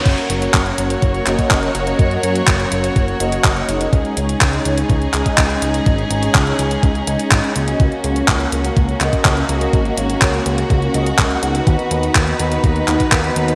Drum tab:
CC |x---------------|----------------|----------------|----------------|
HH |xxxxxxxxxxxxxxxx|xxxxxxxxxxxxxxxx|xxxxxxxxxxxxxxxx|xxxxxxxxxxxxxxxx|
CP |----x-----x-x---|----x-------x---|----x-----x-x---|----x-------x---|
BD |o---o---o--oo---|o---o---o---o---|o---o---o--oo---|o---o---o---o---|

CC |----------------|----------------|----------------|
HH |xxxxxxxxxxxxxxxx|xxxxxxxxxxxxxxxx|xxxxxxxxxxxxxxxx|
CP |----x-----x-x---|----x-------x---|----x-----x-x---|
BD |o---o---o--oo---|o---o---o---o---|o---o---o--oo---|